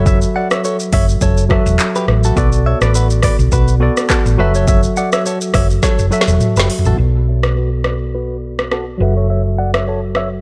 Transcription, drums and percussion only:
0.06 kick loud
0.06 shaker medium
0.22 shaker medium
0.51 cross-stick loud
0.51 shaker medium
0.64 shaker medium
0.80 shaker medium
0.93 kick loud
0.93 open hi-hat medium
0.93 shaker medium
1.09 shaker soft
1.21 kick medium
1.21 shaker medium
1.37 shaker medium
1.50 kick medium
1.50 cross-stick medium
1.66 shaker medium
1.79 clap medium
1.79 shaker medium
1.95 shaker soft
2.08 cross-stick medium
2.24 shaker medium
2.37 kick loud
2.37 shaker medium
2.52 shaker medium
2.81 cross-stick loud
2.81 shaker medium
2.95 shaker medium
3.10 shaker medium
3.23 kick medium
3.23 cross-stick loud
3.23 open hi-hat medium
3.23 shaker medium
3.39 shaker soft
3.52 kick medium
3.52 shaker medium
3.68 shaker medium
3.97 cross-stick loud
3.97 shaker medium
4.10 kick loud
4.10 cross-stick medium
4.10 clap medium
4.10 shaker medium
4.26 shaker medium
4.55 shaker soft
4.68 kick loud
4.68 shaker medium
4.83 shaker medium
4.97 shaker medium
5.12 cross-stick loud
5.12 shaker soft
5.26 shaker medium
5.41 shaker medium
5.54 kick loud
5.54 cross-stick loud
5.54 open hi-hat medium
5.54 shaker medium
5.70 shaker soft
5.83 kick medium
5.83 snare medium
5.83 shaker medium
5.99 shaker medium
6.12 shaker medium
6.21 snare medium
6.28 shaker medium
6.40 mid tom medium
6.40 shaker medium
6.57 snare loud
6.57 shaker soft
6.70 open hi-hat medium
6.70 shaker medium
6.79 floor tom medium
6.85 shaker soft
7.43 cross-stick loud
7.84 cross-stick medium
8.59 cross-stick medium
8.72 cross-stick medium
9.74 cross-stick loud
10.15 cross-stick medium

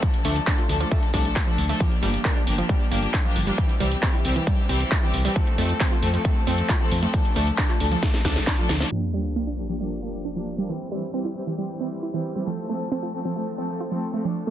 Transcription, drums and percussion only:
0.03 kick loud
0.03 closed hi-hat medium
0.14 closed hi-hat soft
0.25 open hi-hat loud
0.36 closed hi-hat soft
0.47 kick loud
0.47 clap loud
0.47 closed hi-hat medium
0.58 closed hi-hat soft
0.69 open hi-hat loud
0.80 closed hi-hat soft
0.92 kick loud
0.92 closed hi-hat medium
1.03 closed hi-hat soft
1.14 kick medium
1.14 open hi-hat loud
1.25 closed hi-hat soft
1.36 kick loud
1.36 clap loud
1.36 closed hi-hat medium
1.58 open hi-hat loud
1.69 open hi-hat medium
1.80 kick loud
1.80 closed hi-hat medium
1.92 closed hi-hat soft
2.03 open hi-hat loud
2.14 closed hi-hat soft
2.25 kick loud
2.25 clap loud
2.25 closed hi-hat medium
2.47 open hi-hat loud
2.58 closed hi-hat soft
2.69 kick loud
2.69 closed hi-hat medium
2.92 open hi-hat loud
3.03 closed hi-hat soft
3.14 kick loud
3.14 clap loud
3.14 closed hi-hat medium
3.36 open hi-hat loud
3.47 closed hi-hat medium
3.58 kick loud
3.58 closed hi-hat medium
3.69 closed hi-hat soft
3.80 open hi-hat loud
3.92 closed hi-hat medium
4.03 kick loud
4.03 clap loud
4.03 closed hi-hat medium
4.25 open hi-hat loud
4.36 closed hi-hat medium
4.47 kick loud
4.47 closed hi-hat medium
4.69 open hi-hat loud
4.80 closed hi-hat medium
4.91 kick loud
4.91 clap loud
4.91 closed hi-hat medium
5.14 open hi-hat loud
5.25 open hi-hat medium
5.36 kick loud
5.36 closed hi-hat medium
5.47 closed hi-hat soft
5.58 open hi-hat loud
5.69 closed hi-hat medium
5.80 kick loud
5.80 clap loud
5.80 closed hi-hat medium
6.03 open hi-hat loud
6.14 closed hi-hat medium
6.25 kick loud
6.25 closed hi-hat medium
6.47 open hi-hat loud
6.58 closed hi-hat medium
6.69 kick loud
6.69 clap loud
6.69 closed hi-hat medium
6.92 open hi-hat loud
7.03 closed hi-hat medium
7.14 kick loud
7.14 closed hi-hat medium
7.25 closed hi-hat soft
7.36 open hi-hat loud
7.47 closed hi-hat medium
7.58 kick loud
7.58 clap loud
7.58 closed hi-hat medium
7.69 clap soft
7.80 open hi-hat loud
7.92 closed hi-hat medium
8.03 kick loud
8.03 snare medium
8.03 closed hi-hat medium
8.14 snare medium
8.25 kick medium
8.25 snare medium
8.25 open hi-hat loud
8.36 snare medium
8.36 closed hi-hat medium
8.47 kick loud
8.47 snare medium
8.47 clap loud
8.47 closed hi-hat medium
8.69 snare loud
8.69 open hi-hat loud
8.80 snare medium
8.80 open hi-hat medium
8.91 shaker medium
9.36 shaker medium
9.48 shaker soft
9.70 shaker medium
9.80 shaker medium
10.14 shaker medium
10.25 shaker medium
10.58 shaker medium
10.69 shaker medium
11.02 shaker medium
11.14 shaker medium
11.24 shaker soft
11.48 shaker medium
11.59 shaker medium
11.69 shaker soft
11.91 shaker medium
12.03 shaker medium
12.13 shaker soft
12.36 shaker medium
12.47 shaker medium
12.58 shaker soft
12.81 shaker medium
12.92 shaker medium
13.02 shaker soft
13.25 shaker medium
13.36 shaker medium
13.47 shaker soft
13.70 shaker medium
13.80 shaker medium
13.91 shaker soft
14.14 shaker medium
14.25 shaker medium
14.36 shaker soft

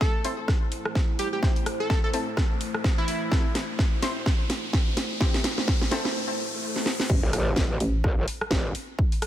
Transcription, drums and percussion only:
0.01 kick loud
0.01 snare medium
0.24 open hi-hat loud
0.48 kick loud
0.48 cross-stick medium
0.48 snare medium
0.72 open hi-hat loud
0.85 cross-stick medium
0.95 kick loud
0.95 snare medium
1.19 open hi-hat loud
1.43 kick loud
1.43 snare medium
1.56 open hi-hat medium
1.66 cross-stick medium
1.66 open hi-hat loud
1.90 kick loud
1.90 snare medium
2.14 open hi-hat loud
2.37 kick loud
2.37 cross-stick medium
2.37 snare medium
2.61 open hi-hat loud
2.74 cross-stick medium
2.84 kick loud
2.84 snare medium
3.08 open hi-hat loud
3.32 kick loud
3.32 snare medium
3.55 snare medium
3.55 open hi-hat loud
3.79 kick loud
3.79 snare medium
4.02 snare medium
4.02 open hi-hat loud
4.26 kick loud
4.26 snare medium
4.50 snare medium
4.50 open hi-hat loud
4.73 kick loud
4.73 snare medium
4.97 snare medium
4.97 open hi-hat loud
5.21 kick loud
5.21 snare medium
5.34 snare medium
5.34 open hi-hat medium
5.44 snare medium
5.44 open hi-hat loud
5.58 snare medium
5.68 kick loud
5.68 snare loud
5.82 snare medium
5.91 snare loud
5.91 open hi-hat loud
6.05 snare medium
6.76 snare medium
6.86 snare medium
7.00 snare medium
7.09 kick loud
7.09 crash loud
7.33 cross-stick medium
7.33 open hi-hat loud
7.56 kick loud
7.56 snare loud
7.80 open hi-hat loud
8.04 kick loud
8.04 cross-stick medium
8.28 open hi-hat loud
8.41 cross-stick medium
8.51 kick loud
8.51 snare loud
8.75 open hi-hat loud
8.99 kick loud
9.12 open hi-hat medium
9.22 cross-stick medium
9.22 open hi-hat loud

